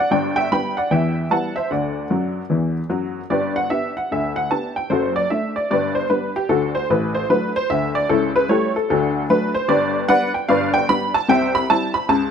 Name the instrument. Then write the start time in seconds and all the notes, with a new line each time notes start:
honky-tonk piano
0.00 D5
0.11 G1 G2 D5 G5
0.36 E5 G5
0.52 G3 B3 D4 G5 B5
0.77 D5 F#5
0.91 E2 E3 E5 G5
1.31 G3 B3 E4 F#5 A5
1.56 C5 E5
1.71 D2 D3 D5 F#5
2.10 F#2 F#3
2.50 E2 E3
2.90 F#2 F#3
3.30 G1 G2 G4 B4 D5
3.56 F#5
3.70 B3 D4 G4 E5
3.97 F#5
4.11 D2 D3 E5
4.36 F#5
4.51 B3 D4 G4 A5
4.76 G5
4.90 F#1 F#2 F#4 A4 C5
5.16 D5
5.30 A3 D4 E5
5.56 D5
5.71 G1 G2 G4 B4 D5
5.95 C5
6.10 G3 B3 D4 B4
6.36 G4
6.49 D2 D3 D4 F#4 A4
6.75 C5
6.90 A1 A2 B4
7.15 C5
7.29 F#3 A3 D4 B4
7.56 C5
7.70 D2 D3 E5
7.95 D5
8.09 C#2 C#3 C#4 E4 A4
8.36 B4
8.49 G3 A3 E4 G4 A4 C#5
8.76 A4
8.90 D2 D3 D4 F#4 A4
9.30 F#3 A3 D4 B4
9.55 C5
9.68 G1 G2 G4 B4 D5
10.09 G3 B3 D4 B4 D5 F#5
10.34 G5
10.49 G1 G2 B4 D5 F5
10.74 G5
10.89 G3 B3 D4 B5
11.14 A5
11.28 C2 C3 C5 E5 G5
11.55 B5
11.70 G3 C4 E4 A5
11.94 B5
12.09 C#2 C#3 A5